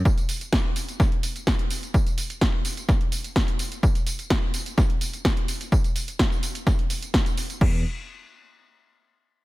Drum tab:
CC |----------------|----------------|----------------|----------------|
HH |-xox--ox-xox-xox|-xox--ox-xox-xox|-xox--ox-xox-xox|-xox--ox-xox-xox|
TB |xxxxx-xxx-xxx-xx|xxxxx-xxx-xxx-xx|xxxxx-xxx-xxx-xx|xxxxxxxxx-xxxxxx|
SD |----o---o---o---|----o---o---o---|----o---o---o---|----o---o---o---|
BD |o---o---o---o---|o---o---o---o---|o---o---o---o---|o---o---o---o---|

CC |x---------------|
HH |----------------|
TB |----------------|
SD |----------------|
BD |o---------------|